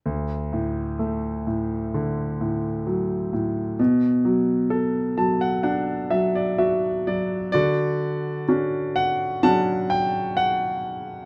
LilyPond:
<<
  \new Staff \with { instrumentName = "Grand piano" } { \time 4/4 \key d \major \tempo 4 = 64 << { r1 | r4. a''16 fis''16 fis''8 e''16 d''16 e''8 d''8 | d''4 r8 fis''8 a''8 g''8 fis''4 | } \\ { r1 | r1 | fis'2 fis''2 | } >> }
  \new Staff \with { instrumentName = "Grand piano" } { \clef bass \time 4/4 \key d \major d,8 a,8 a8 a,8 d8 a,8 fis8 a,8 | b,8 fis8 a'8 fis8 d'8 fis8 fis'8 fis8 | d4 <cis' d' fis'>4 <fis cis' d'>4 r4 | }
>>